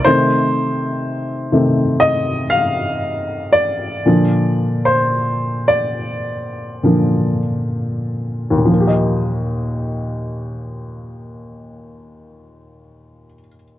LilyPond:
<<
  \new Staff \with { instrumentName = "Upright piano" } { \time 4/4 \key ees \major \tempo 4 = 52 c''2 ees''8 f''4 d''8~ | d''8. c''8. d''4. r4 | r1 | }
  \new Staff \with { instrumentName = "Upright piano" } { \clef bass \time 4/4 \key ees \major <c ees a>4. <c ees a>8 r2 | <bes, d f>4. r4 <bes, d f>8 r4 | <ees, bes, f bes g' ees''>1 | }
>>